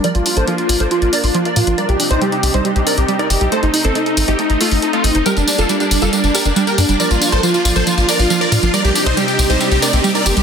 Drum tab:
HH |xxoxxxoxxxooxxox|xxoxxxoxxxoxxxox|xxoxxxoxxxooxxox|xxoxxxoxxxoxxxox|
TB |----------------|----------------|----------------|xxxxxxxxxxxxxxxx|

HH |xxoxxxoxxxooxxox|xxoxxxoxxxoxxxox|
TB |xxxxxxxxxxxxxxxx|xxxxxxxxxxxxxxxx|